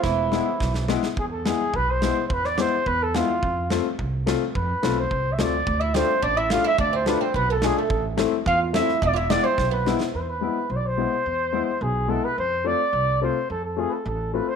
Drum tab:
SD |o-o-oooo|--o---o-|-oo---o-|--o---o-|
BD |o---o---|o---o---|o---o---|o---o---|

SD |--o---o-|--o---o-|--o---o-|--o---oo|
BD |o---o---|o---o---|o---o---|o---o---|

SD |--o-o-oo|--------|--------|--------|
BD |o---o---|--------|--------|--------|

SD |--------|
BD |--------|